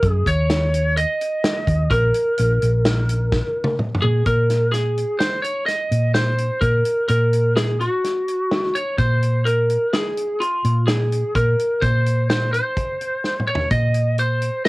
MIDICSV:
0, 0, Header, 1, 4, 480
1, 0, Start_track
1, 0, Key_signature, -5, "minor"
1, 0, Tempo, 472069
1, 1947, Time_signature, 5, 2, 24, 8
1, 14934, End_track
2, 0, Start_track
2, 0, Title_t, "Lead electric guitar"
2, 0, Program_c, 0, 29
2, 0, Note_on_c, 0, 70, 92
2, 112, Note_off_c, 0, 70, 0
2, 112, Note_on_c, 0, 68, 92
2, 279, Note_on_c, 0, 73, 108
2, 299, Note_off_c, 0, 68, 0
2, 988, Note_off_c, 0, 73, 0
2, 992, Note_on_c, 0, 75, 109
2, 1907, Note_off_c, 0, 75, 0
2, 1944, Note_on_c, 0, 70, 84
2, 3817, Note_off_c, 0, 70, 0
2, 4090, Note_on_c, 0, 68, 74
2, 4316, Note_off_c, 0, 68, 0
2, 4336, Note_on_c, 0, 70, 74
2, 4782, Note_off_c, 0, 70, 0
2, 4797, Note_on_c, 0, 68, 79
2, 5274, Note_on_c, 0, 72, 72
2, 5301, Note_off_c, 0, 68, 0
2, 5508, Note_off_c, 0, 72, 0
2, 5512, Note_on_c, 0, 73, 68
2, 5751, Note_off_c, 0, 73, 0
2, 5755, Note_on_c, 0, 75, 87
2, 6239, Note_off_c, 0, 75, 0
2, 6243, Note_on_c, 0, 72, 76
2, 6718, Note_on_c, 0, 70, 77
2, 6744, Note_off_c, 0, 72, 0
2, 7192, Note_off_c, 0, 70, 0
2, 7204, Note_on_c, 0, 70, 86
2, 7687, Note_off_c, 0, 70, 0
2, 7691, Note_on_c, 0, 68, 78
2, 7917, Note_off_c, 0, 68, 0
2, 7936, Note_on_c, 0, 66, 73
2, 8899, Note_on_c, 0, 73, 80
2, 8927, Note_off_c, 0, 66, 0
2, 9130, Note_off_c, 0, 73, 0
2, 9134, Note_on_c, 0, 72, 88
2, 9611, Note_on_c, 0, 70, 82
2, 9632, Note_off_c, 0, 72, 0
2, 10099, Note_off_c, 0, 70, 0
2, 10103, Note_on_c, 0, 68, 75
2, 10577, Note_on_c, 0, 65, 73
2, 10597, Note_off_c, 0, 68, 0
2, 11053, Note_on_c, 0, 68, 74
2, 11075, Note_off_c, 0, 65, 0
2, 11544, Note_off_c, 0, 68, 0
2, 11548, Note_on_c, 0, 70, 83
2, 12015, Note_on_c, 0, 72, 89
2, 12041, Note_off_c, 0, 70, 0
2, 12493, Note_off_c, 0, 72, 0
2, 12505, Note_on_c, 0, 72, 82
2, 12728, Note_off_c, 0, 72, 0
2, 12740, Note_on_c, 0, 72, 71
2, 13664, Note_off_c, 0, 72, 0
2, 13702, Note_on_c, 0, 73, 78
2, 13937, Note_off_c, 0, 73, 0
2, 13941, Note_on_c, 0, 75, 81
2, 14391, Note_off_c, 0, 75, 0
2, 14430, Note_on_c, 0, 72, 87
2, 14891, Note_off_c, 0, 72, 0
2, 14895, Note_on_c, 0, 75, 89
2, 14934, Note_off_c, 0, 75, 0
2, 14934, End_track
3, 0, Start_track
3, 0, Title_t, "Fingered electric bass"
3, 0, Program_c, 1, 33
3, 30, Note_on_c, 1, 42, 89
3, 228, Note_off_c, 1, 42, 0
3, 270, Note_on_c, 1, 39, 96
3, 1054, Note_off_c, 1, 39, 0
3, 1703, Note_on_c, 1, 39, 86
3, 1901, Note_off_c, 1, 39, 0
3, 1942, Note_on_c, 1, 34, 103
3, 2139, Note_off_c, 1, 34, 0
3, 2435, Note_on_c, 1, 34, 92
3, 2626, Note_off_c, 1, 34, 0
3, 2670, Note_on_c, 1, 34, 80
3, 3449, Note_off_c, 1, 34, 0
3, 4105, Note_on_c, 1, 46, 76
3, 4298, Note_off_c, 1, 46, 0
3, 4337, Note_on_c, 1, 46, 86
3, 5121, Note_off_c, 1, 46, 0
3, 6013, Note_on_c, 1, 46, 68
3, 6603, Note_off_c, 1, 46, 0
3, 6732, Note_on_c, 1, 46, 82
3, 6930, Note_off_c, 1, 46, 0
3, 7214, Note_on_c, 1, 46, 92
3, 8001, Note_off_c, 1, 46, 0
3, 9139, Note_on_c, 1, 46, 94
3, 9925, Note_off_c, 1, 46, 0
3, 10825, Note_on_c, 1, 46, 80
3, 11414, Note_off_c, 1, 46, 0
3, 11541, Note_on_c, 1, 46, 77
3, 11738, Note_off_c, 1, 46, 0
3, 12021, Note_on_c, 1, 46, 89
3, 12810, Note_off_c, 1, 46, 0
3, 13941, Note_on_c, 1, 46, 82
3, 14731, Note_off_c, 1, 46, 0
3, 14934, End_track
4, 0, Start_track
4, 0, Title_t, "Drums"
4, 29, Note_on_c, 9, 36, 93
4, 30, Note_on_c, 9, 42, 74
4, 131, Note_off_c, 9, 36, 0
4, 131, Note_off_c, 9, 42, 0
4, 267, Note_on_c, 9, 36, 62
4, 273, Note_on_c, 9, 42, 61
4, 369, Note_off_c, 9, 36, 0
4, 374, Note_off_c, 9, 42, 0
4, 507, Note_on_c, 9, 38, 95
4, 507, Note_on_c, 9, 42, 82
4, 609, Note_off_c, 9, 38, 0
4, 609, Note_off_c, 9, 42, 0
4, 750, Note_on_c, 9, 42, 60
4, 852, Note_off_c, 9, 42, 0
4, 988, Note_on_c, 9, 42, 75
4, 1089, Note_off_c, 9, 42, 0
4, 1231, Note_on_c, 9, 42, 57
4, 1333, Note_off_c, 9, 42, 0
4, 1465, Note_on_c, 9, 38, 112
4, 1465, Note_on_c, 9, 42, 78
4, 1567, Note_off_c, 9, 38, 0
4, 1567, Note_off_c, 9, 42, 0
4, 1701, Note_on_c, 9, 36, 74
4, 1708, Note_on_c, 9, 42, 54
4, 1803, Note_off_c, 9, 36, 0
4, 1810, Note_off_c, 9, 42, 0
4, 1940, Note_on_c, 9, 36, 97
4, 1942, Note_on_c, 9, 42, 73
4, 2041, Note_off_c, 9, 36, 0
4, 2044, Note_off_c, 9, 42, 0
4, 2178, Note_on_c, 9, 42, 59
4, 2279, Note_off_c, 9, 42, 0
4, 2417, Note_on_c, 9, 42, 79
4, 2519, Note_off_c, 9, 42, 0
4, 2664, Note_on_c, 9, 42, 62
4, 2766, Note_off_c, 9, 42, 0
4, 2900, Note_on_c, 9, 38, 107
4, 2900, Note_on_c, 9, 42, 76
4, 3002, Note_off_c, 9, 38, 0
4, 3002, Note_off_c, 9, 42, 0
4, 3141, Note_on_c, 9, 42, 68
4, 3243, Note_off_c, 9, 42, 0
4, 3375, Note_on_c, 9, 38, 59
4, 3378, Note_on_c, 9, 36, 99
4, 3477, Note_off_c, 9, 38, 0
4, 3479, Note_off_c, 9, 36, 0
4, 3700, Note_on_c, 9, 48, 81
4, 3802, Note_off_c, 9, 48, 0
4, 3852, Note_on_c, 9, 47, 70
4, 3954, Note_off_c, 9, 47, 0
4, 4012, Note_on_c, 9, 45, 90
4, 4113, Note_off_c, 9, 45, 0
4, 4329, Note_on_c, 9, 42, 61
4, 4333, Note_on_c, 9, 36, 79
4, 4431, Note_off_c, 9, 42, 0
4, 4434, Note_off_c, 9, 36, 0
4, 4573, Note_on_c, 9, 38, 30
4, 4573, Note_on_c, 9, 42, 51
4, 4675, Note_off_c, 9, 38, 0
4, 4675, Note_off_c, 9, 42, 0
4, 4816, Note_on_c, 9, 38, 29
4, 4816, Note_on_c, 9, 42, 61
4, 4918, Note_off_c, 9, 38, 0
4, 4918, Note_off_c, 9, 42, 0
4, 5059, Note_on_c, 9, 42, 51
4, 5161, Note_off_c, 9, 42, 0
4, 5291, Note_on_c, 9, 38, 93
4, 5291, Note_on_c, 9, 42, 66
4, 5392, Note_off_c, 9, 38, 0
4, 5392, Note_off_c, 9, 42, 0
4, 5534, Note_on_c, 9, 42, 52
4, 5636, Note_off_c, 9, 42, 0
4, 5778, Note_on_c, 9, 38, 28
4, 5778, Note_on_c, 9, 42, 63
4, 5879, Note_off_c, 9, 38, 0
4, 5879, Note_off_c, 9, 42, 0
4, 6016, Note_on_c, 9, 42, 57
4, 6118, Note_off_c, 9, 42, 0
4, 6249, Note_on_c, 9, 38, 92
4, 6249, Note_on_c, 9, 42, 69
4, 6351, Note_off_c, 9, 38, 0
4, 6351, Note_off_c, 9, 42, 0
4, 6491, Note_on_c, 9, 42, 55
4, 6593, Note_off_c, 9, 42, 0
4, 6727, Note_on_c, 9, 36, 85
4, 6728, Note_on_c, 9, 42, 75
4, 6829, Note_off_c, 9, 36, 0
4, 6829, Note_off_c, 9, 42, 0
4, 6967, Note_on_c, 9, 42, 59
4, 7069, Note_off_c, 9, 42, 0
4, 7204, Note_on_c, 9, 42, 71
4, 7306, Note_off_c, 9, 42, 0
4, 7453, Note_on_c, 9, 42, 54
4, 7555, Note_off_c, 9, 42, 0
4, 7695, Note_on_c, 9, 38, 98
4, 7695, Note_on_c, 9, 42, 74
4, 7796, Note_off_c, 9, 38, 0
4, 7796, Note_off_c, 9, 42, 0
4, 7938, Note_on_c, 9, 42, 53
4, 8040, Note_off_c, 9, 42, 0
4, 8180, Note_on_c, 9, 38, 30
4, 8180, Note_on_c, 9, 42, 69
4, 8281, Note_off_c, 9, 38, 0
4, 8281, Note_off_c, 9, 42, 0
4, 8420, Note_on_c, 9, 42, 52
4, 8521, Note_off_c, 9, 42, 0
4, 8658, Note_on_c, 9, 38, 100
4, 8658, Note_on_c, 9, 42, 65
4, 8759, Note_off_c, 9, 38, 0
4, 8759, Note_off_c, 9, 42, 0
4, 8901, Note_on_c, 9, 42, 50
4, 9002, Note_off_c, 9, 42, 0
4, 9135, Note_on_c, 9, 36, 90
4, 9136, Note_on_c, 9, 42, 61
4, 9237, Note_off_c, 9, 36, 0
4, 9237, Note_off_c, 9, 42, 0
4, 9380, Note_on_c, 9, 42, 55
4, 9482, Note_off_c, 9, 42, 0
4, 9622, Note_on_c, 9, 42, 66
4, 9724, Note_off_c, 9, 42, 0
4, 9859, Note_on_c, 9, 42, 55
4, 9961, Note_off_c, 9, 42, 0
4, 10101, Note_on_c, 9, 38, 95
4, 10101, Note_on_c, 9, 42, 73
4, 10203, Note_off_c, 9, 38, 0
4, 10203, Note_off_c, 9, 42, 0
4, 10344, Note_on_c, 9, 42, 60
4, 10445, Note_off_c, 9, 42, 0
4, 10590, Note_on_c, 9, 42, 69
4, 10691, Note_off_c, 9, 42, 0
4, 10825, Note_on_c, 9, 42, 57
4, 10927, Note_off_c, 9, 42, 0
4, 11063, Note_on_c, 9, 38, 95
4, 11063, Note_on_c, 9, 42, 75
4, 11164, Note_off_c, 9, 38, 0
4, 11164, Note_off_c, 9, 42, 0
4, 11308, Note_on_c, 9, 42, 57
4, 11409, Note_off_c, 9, 42, 0
4, 11542, Note_on_c, 9, 36, 90
4, 11546, Note_on_c, 9, 42, 73
4, 11644, Note_off_c, 9, 36, 0
4, 11648, Note_off_c, 9, 42, 0
4, 11789, Note_on_c, 9, 42, 53
4, 11891, Note_off_c, 9, 42, 0
4, 12023, Note_on_c, 9, 36, 88
4, 12025, Note_on_c, 9, 42, 64
4, 12125, Note_off_c, 9, 36, 0
4, 12127, Note_off_c, 9, 42, 0
4, 12266, Note_on_c, 9, 42, 58
4, 12368, Note_off_c, 9, 42, 0
4, 12506, Note_on_c, 9, 38, 100
4, 12506, Note_on_c, 9, 42, 74
4, 12607, Note_off_c, 9, 38, 0
4, 12607, Note_off_c, 9, 42, 0
4, 12751, Note_on_c, 9, 42, 57
4, 12852, Note_off_c, 9, 42, 0
4, 12983, Note_on_c, 9, 42, 67
4, 12984, Note_on_c, 9, 36, 84
4, 13085, Note_off_c, 9, 36, 0
4, 13085, Note_off_c, 9, 42, 0
4, 13228, Note_on_c, 9, 42, 52
4, 13330, Note_off_c, 9, 42, 0
4, 13464, Note_on_c, 9, 38, 46
4, 13566, Note_off_c, 9, 38, 0
4, 13622, Note_on_c, 9, 47, 55
4, 13724, Note_off_c, 9, 47, 0
4, 13779, Note_on_c, 9, 43, 87
4, 13881, Note_off_c, 9, 43, 0
4, 13936, Note_on_c, 9, 42, 65
4, 13940, Note_on_c, 9, 36, 89
4, 14038, Note_off_c, 9, 42, 0
4, 14042, Note_off_c, 9, 36, 0
4, 14175, Note_on_c, 9, 42, 53
4, 14277, Note_off_c, 9, 42, 0
4, 14417, Note_on_c, 9, 42, 61
4, 14518, Note_off_c, 9, 42, 0
4, 14658, Note_on_c, 9, 42, 56
4, 14760, Note_off_c, 9, 42, 0
4, 14900, Note_on_c, 9, 38, 96
4, 14900, Note_on_c, 9, 42, 74
4, 14934, Note_off_c, 9, 38, 0
4, 14934, Note_off_c, 9, 42, 0
4, 14934, End_track
0, 0, End_of_file